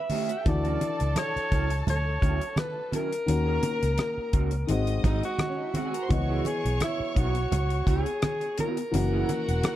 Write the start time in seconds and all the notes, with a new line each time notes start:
Already playing: E3 A3 C#4 G4 E5
0.10 A3 C#4 D#4 G4 D#5, open hi-hat, high conga
0.21 E4 E5
0.29 F#4 F#5, muted clean electric guitar stroke, closed hi-hat
0.38 G4 G5
0.45 D2 E3 D4 E4 F#4 A4 D5 A5, muted clean electric guitar stroke, kick, closed hi-hat, muted conga
0.65 F#3 C#4 F#4, closed hi-hat
0.81 muted clean electric guitar stroke, closed hi-hat, muted conga
1.00 C#2, muted clean electric guitar stroke, closed hi-hat
1.16 C#5, cross-stick, closed hi-hat, high conga
1.35 muted clean electric guitar stroke, muted fingered electric bass stroke, closed hi-hat
1.51 C#2 F#3 C#4 E4, kick, closed hi-hat
1.70 muted clean electric guitar stroke, closed hi-hat
1.87 D2 C#5, closed hi-hat, low conga
2.05 muted clean electric guitar stroke
2.21 D2 F#3 C#4 E4, kick, cross-stick, closed hi-hat, muted conga
2.40 muted clean electric guitar stroke, closed hi-hat
2.56 B4, muted clean electric guitar stroke, cross-stick, closed hi-hat, high conga
2.76 muted clean electric guitar stroke
2.91 F#3 C#4 E4 A#4, closed hi-hat, high conga
3.11 muted clean electric guitar stroke, closed hi-hat
3.26 D#2 D#3 A#3 C#4 F#4 A#4 A#5, muted clean electric guitar stroke, closed hi-hat, muted conga
3.46 A#3 C#4 G#4
3.63 muted clean electric guitar stroke, closed hi-hat, muted conga
3.82 C#2, muted clean electric guitar stroke, closed hi-hat
3.98 cross-stick, closed hi-hat, high conga
4.16 muted clean electric guitar stroke, muted fingered electric bass stroke
4.33 C#2 A#3 C#4 F#4, kick, closed hi-hat
4.51 muted clean electric guitar stroke, closed hi-hat
4.67 G#1 D#3 G#3 C4 F#4 D#5 D#6, closed hi-hat
4.87 muted clean electric guitar stroke, closed hi-hat
5.03 G#1 G#3 C4 D#4 F#4, kick, cross-stick, closed hi-hat, muted conga, low conga
5.23 F#4, muted clean electric guitar stroke, closed hi-hat
5.38 muted clean electric guitar stroke, cross-stick, closed hi-hat, high conga
5.48 C#4 C#5
5.58 D#4 D#5, muted clean electric guitar stroke
5.68 E4 E5
5.74 G#3 C4 F#4 F#5, closed hi-hat, high conga
5.86 G#4 G#5
5.93 A#4 A#5, muted clean electric guitar stroke, closed hi-hat
6.03 C5 C6
6.09 C#2 E3 B3 C#5 D#5 C#6, muted clean electric guitar stroke, kick, closed hi-hat, muted conga
6.13 F#4
6.29 B3 E4 G#4
6.45 G#4, muted clean electric guitar stroke, closed hi-hat, muted conga
6.64 B1, muted clean electric guitar stroke, closed hi-hat
6.80 E4, cross-stick, closed hi-hat, high conga
6.99 muted clean electric guitar stroke, muted fingered electric bass stroke
7.15 B1 B3 E4 F#4, kick, closed hi-hat
7.34 muted clean electric guitar stroke, closed hi-hat
7.50 C#2, muted clean electric guitar stroke, closed hi-hat, low conga
7.70 muted clean electric guitar stroke, closed hi-hat
7.86 C#2 B3 E4 F#4 G#4, kick, cross-stick, closed hi-hat, muted conga
8.05 muted clean electric guitar stroke, closed hi-hat
8.22 muted clean electric guitar stroke, cross-stick, closed hi-hat, high conga
8.41 muted clean electric guitar stroke, closed hi-hat
8.58 B3 E4 F#4 A#4, closed hi-hat, high conga
8.77 muted clean electric guitar stroke, closed hi-hat
8.91 F#1 E3 A#3 C#4 F#4 F#5, muted clean electric guitar stroke, closed hi-hat, muted conga
9.13 A#3 E4 G#4
9.29 muted clean electric guitar stroke, closed hi-hat, muted conga
9.48 E1, muted clean electric guitar stroke, closed hi-hat
9.64 cross-stick, closed hi-hat, high conga